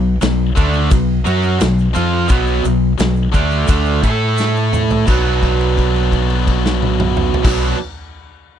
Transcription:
Already playing: fingered electric bass B1, distorted electric guitar B2 F#3
0.22 fingered electric bass B1, distorted electric guitar B2 F#3, snare, ride, shaker
0.55 fingered electric bass D2, distorted electric guitar D3 A3 D4, kick, ride, shaker
0.74 shaker
0.91 fingered electric bass B1, distorted electric guitar B2 F#3, kick, ride, shaker
1.24 fingered electric bass F#2, distorted electric guitar F#3 C#4 F#4, ride, shaker
1.43 shaker
1.59 fingered electric bass B1, distorted electric guitar B2 F#3, snare, ride, shaker
1.78 shaker
1.93 fingered electric bass F2, distorted electric guitar F3 C4 F4, ride, shaker
2.28 fingered electric bass B1, distorted electric guitar B2 F#3 B3, kick, ride, shaker
2.47 shaker
2.64 fingered electric bass B1, distorted electric guitar B2 F#3, ride, shaker
2.98 fingered electric bass B1, distorted electric guitar B2 F#3, snare, ride, shaker
3.16 shaker
3.32 fingered electric bass D2, distorted electric guitar D3 A3 D4, kick, ride, shaker
3.51 shaker
3.67 fingered electric bass D2, distorted electric guitar D3 A3 D4, kick, ride, shaker
3.86 shaker
4.03 fingered electric bass A2, distorted electric guitar A3 E4 A4, kick, ride, shaker
4.38 snare, shaker
4.56 shaker
4.73 mid tom, shaker
4.90 floor tom, shaker
5.05 fingered electric bass B1, distorted electric guitar B2 F#3 B3, kick, crash, shaker
5.09 distorted electric guitar D4
5.43 kick, crash
5.61 crash
5.78 kick, crash
5.96 crash
6.12 kick, crash
6.30 crash
6.47 kick, crash
6.66 snare
6.82 high tom
7.00 mid tom
7.17 mid tom
7.34 floor tom
7.43 fingered electric bass B1, distorted electric guitar B2 F#3 B3, kick, snare, crash
7.47 distorted electric guitar D4

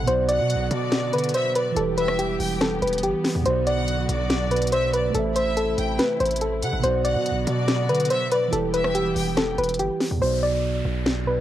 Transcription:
0.03 tine electric piano B2 B3
0.07 808-style bass B1, string section D3 F#3 B3 F#4, tine electric piano F#4, synth pluck C5, closed hi-hat
0.12 tine electric piano D5
0.28 synth pluck D5, violin section F#5, closed hi-hat
0.39 808-style bass B2
0.50 closed hi-hat
0.55 808-style bass B1
0.71 808-style bass B2, violin section D5, closed hi-hat
0.92 snare, closed hi-hat
1.13 808-style bass D3, synth pluck B4, closed hi-hat
1.18 closed hi-hat
1.24 closed hi-hat
1.29 closed hi-hat
1.34 synth pluck C5, violin section E5, closed hi-hat
1.55 synth pluck B4, violin section D5, closed hi-hat
1.72 tine electric piano E3 E4
1.76 808-style bass E1, string section E3 G3 B3 G4, tine electric piano G4, synth pluck A4, closed hi-hat
1.81 tine electric piano B4
1.97 synth pluck B4, violin section E5, closed hi-hat
2.08 cross-stick
2.19 synth pluck G4, closed hi-hat
2.40 808-style bass E1, violin section G5, open hi-hat
2.61 synth pluck A4, cross-stick, snare, closed hi-hat
2.82 808-style bass E1, synth pluck B4, closed hi-hat
2.87 closed hi-hat
2.93 closed hi-hat
2.98 closed hi-hat
3.03 808-style bass G1, synth pluck G4, closed hi-hat
3.24 snare, open hi-hat
3.35 808-style bass E2
3.41 tine electric piano B2 B3
3.46 808-style bass B1, string section D3 F#3 F#4, tine electric piano F#4, synth pluck C5, closed hi-hat
3.50 tine electric piano D5
3.67 synth pluck D5, violin section F#5, closed hi-hat
3.88 closed hi-hat
4.09 808-style bass B1, violin section D5, closed hi-hat
4.30 snare, closed hi-hat
4.49 tine electric piano B2 B3 F#4, synth pluck B4, closed hi-hat
4.54 tine electric piano D5, closed hi-hat
4.62 closed hi-hat
4.67 closed hi-hat
4.72 synth pluck C5, violin section E5, closed hi-hat
4.93 synth pluck B4, violin section D5, closed hi-hat
5.10 tine electric piano A3 A4
5.15 808-style bass A1, string section C3 E3 A3 E4, synth pluck A4, tine electric piano C5, closed hi-hat
5.19 tine electric piano E5
5.36 synth pluck C5, violin section E5, closed hi-hat
5.57 synth pluck A4, closed hi-hat
5.78 808-style bass A1, violin section G5, closed hi-hat
5.99 synth pluck B4, snare, closed hi-hat
6.20 808-style bass A1, synth pluck C5, closed hi-hat
6.26 closed hi-hat
6.31 closed hi-hat
6.36 closed hi-hat
6.41 synth pluck A4, closed hi-hat
6.62 808-style bass C3, violin section F#5, closed hi-hat
6.73 808-style bass A1
6.79 tine electric piano B2 B3
6.83 808-style bass B1, string section D3 F#3 B3 F#4, tine electric piano F#4, synth pluck C5, closed hi-hat
6.88 tine electric piano D5
7.05 synth pluck D5, violin section F#5, closed hi-hat
7.15 808-style bass B2
7.26 closed hi-hat
7.31 808-style bass B1
7.47 808-style bass B2, violin section D5, closed hi-hat
7.68 snare, closed hi-hat
7.89 808-style bass D3, synth pluck B4, closed hi-hat
7.95 closed hi-hat
8.00 closed hi-hat
8.05 closed hi-hat
8.10 synth pluck C5, violin section E5, closed hi-hat
8.31 synth pluck B4, violin section D5, closed hi-hat
8.48 tine electric piano E3 E4
8.53 808-style bass E1, string section E3 G3 B3 G4, tine electric piano G4, synth pluck A4, closed hi-hat
8.57 tine electric piano B4
8.73 synth pluck B4, violin section E5, closed hi-hat
8.84 cross-stick
8.95 synth pluck G4, closed hi-hat
9.16 808-style bass E1, violin section G5, open hi-hat
9.37 synth pluck A4, cross-stick, snare, closed hi-hat
9.58 808-style bass E1, synth pluck B4, closed hi-hat
9.64 closed hi-hat
9.69 closed hi-hat
9.74 closed hi-hat
9.79 808-style bass G1, synth pluck G4, closed hi-hat
10.00 snare, open hi-hat
10.11 808-style bass E2
10.17 tine electric piano B2 B3
10.21 808-style bass B1, tine electric piano F#4, synth pluck C5, downlifter
10.26 tine electric piano D5
10.43 synth pluck D5
10.85 808-style bass B1
11.06 snare
11.25 tine electric piano B2 B3 F#4, synth pluck B4
11.30 tine electric piano D5

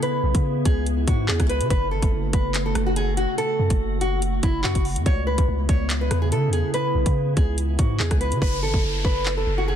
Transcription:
Already playing: ambient pad C#3 B3 E4
0.03 nylon-string guitar B4, closed hi-hat
0.24 808-style bass B1
0.35 808-style bass C#3, kick, closed hi-hat
0.65 808-style bass C#2, nylon-string guitar G#4, kick, closed hi-hat
0.86 closed hi-hat
1.08 808-style bass G#2, nylon-string guitar F#4, kick, closed hi-hat
1.28 808-style bass E2, nylon-string guitar G#4, clap
1.40 808-style bass C#2, kick, cross-stick, closed hi-hat
1.49 nylon-string guitar B4, closed hi-hat
1.61 808-style bass C#3, closed hi-hat
1.70 808-style bass F#1, ambient pad A3 F#4, nylon-string guitar B4, kick, closed hi-hat
1.91 808-style bass G#1, nylon-string guitar A4
2.02 808-style bass F#1, kick, closed hi-hat
2.12 808-style bass F#1
2.33 808-style bass F#1, nylon-string guitar B4, kick, closed hi-hat
2.54 clap, closed hi-hat
2.66 nylon-string guitar A4
2.75 808-style bass F#1, cross-stick, closed hi-hat
2.86 nylon-string guitar F#4
2.96 nylon-string guitar G#4, closed hi-hat
3.17 nylon-string guitar F#4, closed hi-hat
3.38 nylon-string guitar A4, closed hi-hat
3.59 808-style bass F#2
3.70 808-style bass F#1, kick, closed hi-hat
4.01 nylon-string guitar F#4, closed hi-hat
4.22 closed hi-hat
4.43 808-style bass F#1, nylon-string guitar E4, kick, closed hi-hat
4.64 808-style bass F#2, nylon-string guitar F#4, clap
4.75 808-style bass F#1, kick, closed hi-hat
4.85 open hi-hat
4.96 808-style bass F#2, closed hi-hat
5.06 808-style bass C#2, ambient pad C#3 B3 E4, nylon-string guitar C#5, kick, closed hi-hat
5.27 nylon-string guitar B4
5.38 808-style bass C#2, kick, closed hi-hat
5.48 808-style bass C#2
5.69 808-style bass C#2, nylon-string guitar C#5, kick, closed hi-hat
5.90 clap, closed hi-hat
6.01 nylon-string guitar B4
6.11 808-style bass E2, cross-stick, closed hi-hat
6.22 nylon-string guitar G#4
6.32 808-style bass C#3, nylon-string guitar A4, closed hi-hat
6.48 808-style bass E2
6.53 nylon-string guitar G#4, closed hi-hat
6.74 nylon-string guitar B4, closed hi-hat
6.95 808-style bass B1
7.06 808-style bass C#3, kick, closed hi-hat
7.37 808-style bass C#2, nylon-string guitar G#4, kick, closed hi-hat
7.58 closed hi-hat
7.79 808-style bass G#2, nylon-string guitar F#4, kick, closed hi-hat
8.00 808-style bass E2, nylon-string guitar G#4, clap
8.11 808-style bass C#2, kick, cross-stick, closed hi-hat
8.21 nylon-string guitar B4, closed hi-hat
8.32 808-style bass C#3, closed hi-hat
8.42 808-style bass F#1, nylon-string guitar B4, kick, downlifter
8.63 808-style bass G#1, nylon-string guitar A4
8.74 808-style bass F#1, kick
8.84 808-style bass F#1
9.05 808-style bass F#1, nylon-string guitar B4, kick
9.26 clap
9.37 nylon-string guitar A4
9.47 808-style bass F#1
9.58 nylon-string guitar F#4
9.68 nylon-string guitar G#4

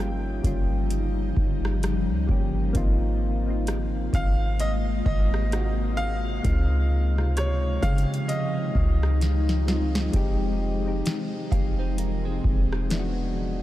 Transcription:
Already playing: 808-style bass G1, ambient pad C#3 F3 G3 D#4, synth keys G3 A#3 C#4 F4, grand piano G5
0.43 808-style bass G1, synth keys G3 A#3 C#4 F4, kick, closed hi-hat
0.90 closed hi-hat
1.37 808-style bass G1, kick
1.65 cross-stick
1.83 cross-stick, closed hi-hat
2.10 808-style bass C#2
2.27 808-style bass G1, synth keys G3 A#3 C#4 G4, kick
2.73 808-style bass G#1, ambient pad C3 G#3 A#3 F4, synth keys A#3 C4 D#4 F4, kick, closed hi-hat
3.47 synth keys A#3 C4 D#4 F4
3.67 cross-stick, closed hi-hat
4.13 808-style bass G#1, synth keys A#3 C4 D#4 F4, grand piano F5, kick, closed hi-hat
4.60 grand piano D#5, closed hi-hat
5.06 808-style bass G#1, grand piano D#5, kick
5.34 cross-stick
5.51 synth keys A#3 C4 D#4 F#4, cross-stick, closed hi-hat
5.97 grand piano F5
6.43 808-style bass C#2, ambient pad D#3 F3 G#3 D#4, synth keys G#3 C4 D#4 F4, kick, closed hi-hat
7.16 synth keys C3 G#3 D#4 F4, cross-stick
7.37 grand piano C#5, cross-stick, closed hi-hat
7.81 808-style bass C#3, synth keys G#3 C4 D#4 G4, grand piano F5, kick, closed hi-hat
7.98 closed hi-hat
8.14 closed hi-hat
8.28 grand piano D#5, closed hi-hat
8.75 808-style bass C#2, kick
9.03 cross-stick
9.21 snare, closed hi-hat
9.49 snare
9.66 synth keys G#3 C4 D#4 F4, snare
9.95 snare
10.12 808-style bass F1, ambient pad C3 G#3, synth keys G#3 C4 D#4 G4, kick, closed hi-hat
10.85 synth keys G#3 C4 D#4 G4
11.06 snare, closed hi-hat
11.51 808-style bass F1, synth keys G#3 C4 D#4 G4, clean electric guitar G#4 F5, kick, closed hi-hat
11.79 clean electric guitar D#4 C5
11.98 clean electric guitar A#4, closed hi-hat
12.25 clean electric guitar C4 G#4
12.44 808-style bass E1, kick
12.73 cross-stick
12.89 synth keys G#3 B3 D4 E4, snare, closed hi-hat
12.99 synth keys F#4

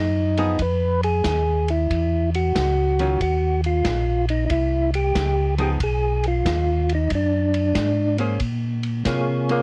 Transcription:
Already playing: tonewheel organ F#2 D#4
0.37 hollow-body jazz guitar F3 B3 D#4 G#4, ride
0.59 tonewheel organ F2 B4, kick, ride
1.03 tonewheel organ G#4, ride
1.24 tonewheel organ D#2, kick, snare, hi-hat pedal, ride
1.68 tonewheel organ E4, ride
1.89 tonewheel organ E2, kick, ride
2.34 tonewheel organ F#4, ride
2.55 tonewheel organ C#2, kick, snare, hi-hat pedal, ride
2.99 hollow-body jazz guitar D#3 F#3 C#4 F4, ride
3.20 tonewheel organ D#2 F#4, kick, ride
3.64 tonewheel organ F4, ride
3.85 tonewheel organ A#1, kick, snare, hi-hat pedal, ride
4.29 tonewheel organ D#4, ride
4.46 tonewheel organ D#4, ride
4.50 tonewheel organ C2 E4, kick
4.94 tonewheel organ G4, ride
5.15 tonewheel organ C#2, kick, snare, hi-hat pedal, ride
5.58 hollow-body jazz guitar F3 B3 D#4 G#4, tonewheel organ G4, ride
5.80 tonewheel organ B1 G#4, kick, ride
6.24 ride
6.28 tonewheel organ F4
6.45 tonewheel organ D#2, kick, snare, hi-hat pedal, ride
6.89 ride
6.95 tonewheel organ D#4
7.10 tonewheel organ F#2, kick, ride
7.15 tonewheel organ D4
7.54 ride
7.75 tonewheel organ G#2, kick, snare, hi-hat pedal, ride
8.18 hollow-body jazz guitar A#3 C#4 G#4 C5, ride
8.40 tonewheel organ A#2, kick, ride
8.83 ride
9.05 tonewheel organ C3 A#3 F4 G#4 C#5, kick, snare, hi-hat pedal, ride
9.49 hollow-body jazz guitar A#3 G#4 C5, tenor saxophone A#3, ride

